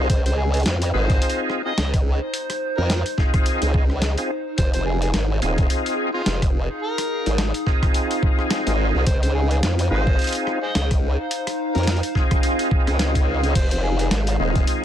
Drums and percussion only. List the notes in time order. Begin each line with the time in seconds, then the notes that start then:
0.10 kick, closed hi-hat
0.26 closed hi-hat
0.54 closed hi-hat
0.57 closed hi-hat
0.60 closed hi-hat
0.63 snare, closed hi-hat
0.66 closed hi-hat
0.82 closed hi-hat
1.10 kick, closed hi-hat
1.22 closed hi-hat
1.30 closed hi-hat
1.50 cross-stick
1.78 snare, closed hi-hat
1.94 kick, cross-stick, closed hi-hat
2.34 closed hi-hat
2.50 cross-stick, closed hi-hat
2.90 snare, closed hi-hat
3.06 closed hi-hat
3.18 kick, snare
3.34 kick, cross-stick, closed hi-hat
3.46 closed hi-hat
3.62 closed hi-hat
3.74 kick
3.90 cross-stick
4.02 snare, closed hi-hat
4.18 closed hi-hat
4.58 kick, closed hi-hat
4.74 closed hi-hat
5.02 closed hi-hat
5.14 snare, closed hi-hat
5.42 closed hi-hat
5.58 kick, closed hi-hat
5.70 closed hi-hat
5.86 closed hi-hat
6.26 snare, closed hi-hat
6.42 kick, cross-stick, closed hi-hat
6.98 cross-stick, closed hi-hat
7.26 closed hi-hat
7.38 snare, closed hi-hat
7.54 closed hi-hat
7.66 kick, snare
7.83 kick, cross-stick, closed hi-hat
7.94 closed hi-hat
8.11 closed hi-hat
8.23 kick
8.39 cross-stick
8.50 snare, closed hi-hat
8.67 closed hi-hat
9.07 kick, closed hi-hat
9.23 closed hi-hat
9.51 closed hi-hat
9.63 snare, closed hi-hat
9.79 closed hi-hat
10.07 kick
10.19 closed hi-hat
10.22 closed hi-hat
10.24 closed hi-hat
10.27 closed hi-hat
10.32 closed hi-hat
10.35 closed hi-hat
10.47 cross-stick
10.75 snare, closed hi-hat
10.91 kick, cross-stick, closed hi-hat
11.31 closed hi-hat
11.47 cross-stick, closed hi-hat
11.75 closed hi-hat
11.78 closed hi-hat
11.83 closed hi-hat
11.87 snare, closed hi-hat
11.92 closed hi-hat
11.97 closed hi-hat
12.03 closed hi-hat
12.15 kick, snare
12.31 kick, cross-stick, closed hi-hat
12.43 closed hi-hat
12.59 closed hi-hat
12.71 kick
12.87 cross-stick, closed hi-hat
12.99 snare, closed hi-hat
13.15 kick, closed hi-hat
13.44 closed hi-hat
13.55 kick, closed hi-hat, crash
13.71 closed hi-hat
13.99 closed hi-hat
14.11 snare, closed hi-hat
14.27 closed hi-hat
14.56 kick, closed hi-hat
14.67 closed hi-hat